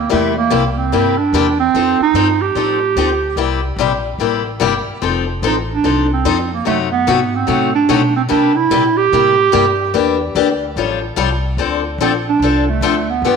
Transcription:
Already playing: clarinet A#3
0.09 upright bass E2, steel-string acoustic guitar C3 G3 A#3 E4 G4, clarinet A3
0.37 clarinet A#3
0.50 upright bass C2, steel-string acoustic guitar C3 G3 A#3 E4 G4
0.71 clarinet A#3
0.77 clarinet C4
0.92 upright bass G2, steel-string acoustic guitar C3 G3 A#3 E4 G4
1.18 clarinet D4
1.33 upright bass E2, steel-string acoustic guitar C3 G3 A#3 E4 G4
1.60 clarinet C4
1.74 upright bass F2, steel-string acoustic guitar F3 C4 D#4 A4
2.00 clarinet D#4, muted upright bass stroke
2.14 upright bass G2, steel-string acoustic guitar F3 C4 D#4 A4
2.41 clarinet G4
2.55 upright bass A2, steel-string acoustic guitar F3 C4 D#4 A4
2.96 upright bass D2, steel-string acoustic guitar F3 C4 D#4 A4
3.36 upright bass C2, steel-string acoustic guitar C3 G3 A#3 E4 G4
3.76 upright bass A#1, steel-string acoustic guitar C3 G3 A#3 E4
3.81 steel-string acoustic guitar G4
4.18 upright bass A1, steel-string acoustic guitar C3 G3 A#3 E4 G4
4.60 upright bass G1, steel-string acoustic guitar C3 G3 A#3 E4 G4
4.87 muted upright bass stroke
5.02 upright bass F1, steel-string acoustic guitar F3 C4 D#4 A4
5.42 upright bass A1, steel-string acoustic guitar F3 C4 D#4 A4
5.47 clarinet D#4
5.73 clarinet D4
5.84 upright bass C2, steel-string acoustic guitar F3 C4 D#4 A4
6.13 clarinet C4
6.25 upright bass F2, steel-string acoustic guitar F3 C4 D#4 A4
6.53 clarinet A#3
6.65 upright bass F#2, steel-string acoustic guitar C3 F#3 A3 D#4 F#4, clarinet A3
6.92 clarinet B3
7.07 upright bass G#2, steel-string acoustic guitar C3 F#3 A3 D#4 F#4
7.35 clarinet C4
7.47 upright bass A2, steel-string acoustic guitar C3 F#3 A3 D#4 F#4
7.75 clarinet D4
7.89 upright bass B2, steel-string acoustic guitar C3 F#3 A3 D#4 F#4
8.16 clarinet C4
8.29 steel-string acoustic guitar C3 G3 A#3 E4 G4, upright bass C3, clarinet D4
8.56 clarinet E4
8.70 upright bass A#2, steel-string acoustic guitar C3 G3 A#3 E4 G4
8.97 clarinet G4
9.12 upright bass A2, steel-string acoustic guitar C3 G3 A#3 E4 G4
9.52 upright bass G2, steel-string acoustic guitar C3 G3 A#3 E4 G4
9.94 upright bass E2, steel-string acoustic guitar E3 A#3 D4 G4
10.35 upright bass D2, steel-string acoustic guitar E3 A#3 D4 G4
10.76 upright bass A1, steel-string acoustic guitar F3 G3 C#4 F4 A4
11.16 upright bass C2, steel-string acoustic guitar F3 G3 C#4 F4 A4
11.57 upright bass D2, steel-string acoustic guitar D3 F3 C4 D4 A4
11.98 upright bass A#1, steel-string acoustic guitar D3 F3 C4 D4 A4, clarinet C4
12.29 clarinet D4
12.39 upright bass C2, steel-string acoustic guitar D3 F3 D4
12.43 steel-string acoustic guitar C4 A4
12.70 clarinet A3
12.81 upright bass D2, steel-string acoustic guitar D3 F3 C4 D4 A4
13.10 clarinet B3
13.22 upright bass G2, steel-string acoustic guitar D3 F3 B3 D4
13.26 steel-string acoustic guitar G4

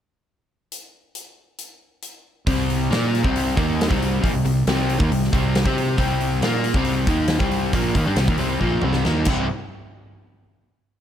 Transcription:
0.72 closed hi-hat
1.15 closed hi-hat
1.58 closed hi-hat
2.02 closed hi-hat
2.46 fingered electric bass C2, overdriven electric guitar C3 G3 C4, kick, open hi-hat
2.70 open hi-hat
2.91 fingered electric bass A#2, overdriven electric guitar A#3 F4 A#4, snare, open hi-hat
3.15 open hi-hat
3.23 fingered electric bass C2, overdriven electric guitar C3 G3 C4, kick
3.36 open hi-hat
3.56 fingered electric bass D#2, overdriven electric guitar D#3 A#3 D#4, kick, open hi-hat
3.81 snare, open hi-hat
3.88 fingered electric bass C2, overdriven electric guitar C3 G3 C4, kick
3.92 snare
4.02 open hi-hat
4.21 fingered electric bass A#1, overdriven electric guitar A#2 F3, kick, open hi-hat
4.33 fingered electric bass C2, overdriven electric guitar C3 G3
4.45 fingered electric bass C2, overdriven electric guitar C3 G3, open hi-hat
4.67 fingered electric bass C2, overdriven electric guitar C3 G3 C4, snare, open hi-hat
4.89 open hi-hat
4.99 fingered electric bass D#2, overdriven electric guitar D#3 A#3, kick
5.10 fingered electric bass C2, overdriven electric guitar C3 G3, open hi-hat
5.24 snare
5.32 fingered electric bass C2, overdriven electric guitar C3 G3 C4, kick, open hi-hat
5.55 snare, open hi-hat
5.66 fingered electric bass C3, overdriven electric guitar C4 G4 C5, kick
5.78 open hi-hat
5.98 fingered electric bass C2, overdriven electric guitar C3 G3 C4, kick, open hi-hat
6.21 open hi-hat
6.41 fingered electric bass A#2, overdriven electric guitar A#3 F4 A#4, snare, open hi-hat
6.64 open hi-hat
6.74 fingered electric bass C2, overdriven electric guitar C3 G3 C4, kick
6.85 open hi-hat
7.07 fingered electric bass D#2, overdriven electric guitar D#3 A#3 D#4, kick, open hi-hat
7.28 snare, open hi-hat
7.39 fingered electric bass C2, overdriven electric guitar C3 G3 C4, kick, snare
7.51 open hi-hat
7.73 fingered electric bass A#1, overdriven electric guitar A#2 F3 A#3, kick, open hi-hat
7.95 fingered electric bass D#2, overdriven electric guitar D#3 A#3, kick, open hi-hat
8.06 fingered electric bass G2, overdriven electric guitar G3 D4
8.16 fingered electric bass C2, overdriven electric guitar C3 G3, snare, open hi-hat
8.28 fingered electric bass D#2, overdriven electric guitar D#3 A#3, kick
8.38 fingered electric bass C2, overdriven electric guitar C3 G3 C4, open hi-hat
8.60 fingered electric bass A#1, overdriven electric guitar A#2 F3 A#3, kick
8.81 fingered electric bass C2, overdriven electric guitar C3 G3 C4, mid tom
8.93 snare
9.05 fingered electric bass D#2, overdriven electric guitar D#3 A#3 D#4, snare
9.25 fingered electric bass C2, overdriven electric guitar C3 E3 G3 C4, kick, crash
9.30 overdriven electric guitar E4

